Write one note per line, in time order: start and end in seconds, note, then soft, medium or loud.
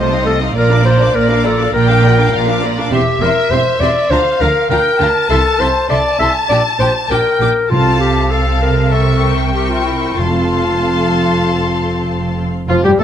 0.00 0.49 C2 medium
0.00 0.49 C3 medium
0.00 0.11 A3 soft
0.00 0.11 F4 soft
0.00 0.25 C5 medium
0.00 0.12 D#5 soft
0.00 0.56 D#5 medium
0.00 0.12 A5 soft
0.11 0.26 C4 soft
0.11 0.27 D#4 soft
0.11 0.27 F5 soft
0.11 0.27 C6 soft
0.26 0.41 A3 soft
0.26 0.41 F4 soft
0.26 0.40 A4 medium
0.26 0.41 D#5 soft
0.26 0.41 A5 soft
0.41 0.56 C4 soft
0.41 0.56 D#4 soft
0.41 0.57 F5 soft
0.41 0.57 C6 soft
0.55 1.08 A#1 medium
0.55 1.08 A#2 medium
0.55 0.70 A#3 medium
0.55 0.70 F4 soft
0.55 0.85 A#4 medium
0.55 1.72 D5 medium
0.55 0.70 D5 medium
0.55 0.70 A#5 medium
0.71 0.86 D4 soft
0.71 0.86 A#4 soft
0.71 0.86 F5 soft
0.71 0.86 D6 soft
0.85 1.01 A#3 soft
0.85 1.01 F4 medium
0.85 1.16 C5 medium
0.85 1.01 D5 soft
0.85 1.01 A#5 soft
1.00 1.15 D4 soft
1.00 1.15 A#4 soft
1.00 1.16 F5 soft
1.00 1.16 D6 soft
1.14 1.68 A#1 medium
1.14 1.67 A#2 medium
1.14 1.29 A#3 soft
1.14 1.29 F4 soft
1.14 1.45 A#4 medium
1.14 1.30 D5 soft
1.14 1.30 A#5 soft
1.29 1.45 D4 soft
1.29 1.45 A#4 soft
1.29 1.45 F5 soft
1.29 1.45 D6 soft
1.45 1.60 A#3 medium
1.45 1.60 F4 soft
1.45 1.73 A4 medium
1.45 1.60 D5 soft
1.45 1.60 A#5 soft
1.59 1.75 D4 soft
1.59 1.75 A#4 soft
1.59 1.75 F5 soft
1.59 1.74 D6 soft
1.74 2.27 A#1 medium
1.74 2.26 A#2 medium
1.74 1.88 A#3 soft
1.74 1.89 F4 soft
1.74 2.61 A#4 medium
1.74 1.89 D5 medium
1.74 2.33 G5 medium
1.74 1.88 A#5 soft
1.89 2.04 D4 soft
1.89 2.04 A#4 soft
1.89 2.04 F5 soft
1.89 2.04 D6 soft
2.04 2.19 A#3 soft
2.04 2.19 F4 soft
2.04 2.19 D5 soft
2.04 2.19 A#5 medium
2.18 2.33 D4 soft
2.18 2.33 A#4 soft
2.18 2.34 F5 soft
2.18 2.34 D6 soft
2.33 2.85 A#1 medium
2.33 2.85 A#2 medium
2.33 2.47 A#3 medium
2.33 2.47 F4 medium
2.33 2.48 D5 soft
2.33 2.64 F5 medium
2.33 2.48 A#5 medium
2.48 2.63 D4 soft
2.48 2.63 A#4 soft
2.48 2.64 F5 soft
2.48 2.64 D6 soft
2.63 2.78 A#3 soft
2.63 2.78 F4 soft
2.63 2.93 D5 medium
2.63 2.78 D5 soft
2.63 2.79 A#5 soft
2.77 2.92 D4 soft
2.77 2.92 A#4 soft
2.77 2.93 F5 soft
2.77 2.93 D6 soft
2.91 3.00 E1 medium
2.91 2.99 E2 medium
2.91 3.00 C4 medium
2.91 3.23 G4 medium
2.91 3.00 G4 medium
2.91 4.11 E5 medium
2.91 3.01 E5 medium
2.91 3.01 C6 medium
3.21 3.29 E1 medium
3.21 3.29 E2 medium
3.21 3.29 C4 soft
3.21 3.29 G4 medium
3.21 3.52 A#4 medium
3.21 3.31 E5 soft
3.21 3.31 C6 soft
3.50 3.58 E1 medium
3.50 3.59 E2 medium
3.50 3.59 C4 soft
3.50 3.59 G4 soft
3.50 3.82 C5 medium
3.50 3.61 E5 soft
3.50 3.61 C6 medium
3.80 3.89 E1 medium
3.80 3.88 E2 medium
3.80 3.89 C4 soft
3.80 3.89 G4 soft
3.80 4.12 D5 medium
3.80 3.90 E5 medium
3.80 3.90 C6 medium
4.10 4.19 D2 medium
4.10 4.18 D3 medium
4.10 4.18 D4 soft
4.10 4.19 F4 medium
4.10 4.42 C5 medium
4.10 4.71 F5 medium
4.10 4.20 F5 medium
4.10 4.20 A#5 medium
4.40 4.48 D2 soft
4.40 4.49 D3 medium
4.40 4.48 D4 soft
4.40 4.48 F4 soft
4.40 4.69 A#4 medium
4.40 4.50 F5 medium
4.40 4.49 A#5 medium
4.69 4.77 D2 medium
4.69 4.79 D3 medium
4.69 4.78 D4 medium
4.69 4.78 F4 medium
4.69 5.29 A#4 medium
4.69 4.79 F5 medium
4.69 5.00 G5 medium
4.69 4.79 A#5 soft
4.99 5.08 D2 medium
4.99 5.08 D3 soft
4.99 5.07 D4 soft
4.99 5.07 F4 medium
4.99 5.08 F5 soft
4.99 5.89 A5 medium
4.99 5.09 A#5 soft
5.29 5.38 C2 medium
5.29 5.38 C3 medium
5.29 5.37 E4 medium
5.29 5.37 A4 medium
5.29 5.61 A4 medium
5.29 5.38 E5 medium
5.29 5.38 C6 medium
5.59 5.68 C2 soft
5.59 5.68 C3 medium
5.59 5.67 E4 soft
5.59 5.67 A4 soft
5.59 5.89 C5 medium
5.59 5.69 E5 soft
5.59 5.68 C6 soft
5.89 5.99 C2 medium
5.89 5.97 C3 medium
5.89 5.97 E4 soft
5.89 5.97 A4 soft
5.89 6.19 D5 medium
5.89 5.98 E5 soft
5.89 7.08 A5 medium
5.89 5.98 C6 soft
6.19 6.28 C2 medium
6.19 6.27 C3 soft
6.19 6.27 E4 soft
6.19 6.27 A4 soft
6.19 6.33 E5 medium
6.19 6.29 E5 soft
6.19 6.29 C6 soft
6.49 6.58 A#1 medium
6.49 6.57 A#2 medium
6.49 6.58 D4 soft
6.49 6.58 G4 soft
6.49 6.63 D5 medium
6.49 6.58 G5 soft
6.49 6.58 D6 soft
6.79 6.88 A#1 soft
6.79 6.87 A#2 medium
6.79 6.88 D4 soft
6.79 6.88 G4 soft
6.79 6.94 C5 medium
6.79 6.87 G5 soft
6.79 6.88 D6 soft
7.09 7.18 A#1 medium
7.09 7.18 A#2 medium
7.09 7.18 D4 soft
7.09 7.18 G4 medium
7.09 7.72 A#4 medium
7.09 7.19 G5 soft
7.09 7.40 G5 medium
7.09 7.19 D6 soft
7.40 7.48 A#1 medium
7.40 7.48 A#2 soft
7.40 7.49 D4 soft
7.40 7.49 G4 soft
7.40 7.49 G5 soft
7.40 7.49 G5 medium
7.40 7.49 D6 soft
7.70 10.13 C2 medium
7.70 10.13 C3 medium
7.70 8.57 C3 medium
7.70 8.27 C4 soft
7.70 7.99 F4 medium
7.70 8.27 A4 medium
7.70 8.27 F5 medium
7.70 8.29 A5 medium
7.70 8.27 A5 medium
8.00 8.32 G4 medium
8.30 8.90 C4 soft
8.30 8.90 A4 soft
8.30 8.61 A4 medium
8.30 8.90 F5 soft
8.30 8.91 F5 soft
8.30 8.90 A5 soft
8.62 8.93 A#4 medium
8.91 9.53 C4 soft
8.91 9.32 A4 medium
8.91 9.53 A#4 soft
8.91 9.53 E5 soft
8.91 9.23 E5 soft
8.91 9.53 C#6 soft
9.23 10.16 G5 soft
9.53 10.16 C4 soft
9.53 9.71 G4 medium
9.53 10.16 A#4 soft
9.53 10.17 E5 soft
9.53 10.16 C#6 soft
9.70 9.84 F4 soft
9.85 10.18 E4 soft
10.16 12.46 F1 soft
10.16 12.46 F2 soft
10.16 11.10 F2 medium
10.16 12.46 C4 soft
10.16 12.39 F4 medium
10.16 12.50 A4 soft
10.16 12.50 F5 soft
10.16 12.39 A5 soft
10.16 12.49 C6 soft
12.68 12.83 F1 medium
12.68 12.83 F2 medium
12.68 12.76 F3 medium
12.68 12.86 F3 medium
12.68 12.75 F4 medium
12.68 12.83 F4 medium
12.68 12.76 F4 medium
12.68 12.84 F4 medium
12.84 12.90 G2 soft
12.84 13.02 G3 medium
12.84 12.92 G3 medium
12.84 12.91 G4 soft
12.84 13.00 G4 soft
12.84 12.90 G4 soft
12.84 12.91 G4 soft
12.84 12.91 G4 medium
12.98 13.04 A1 soft
12.98 13.04 A2 medium
12.98 13.04 A3 medium
12.98 13.04 A4 medium
12.98 13.04 A4 soft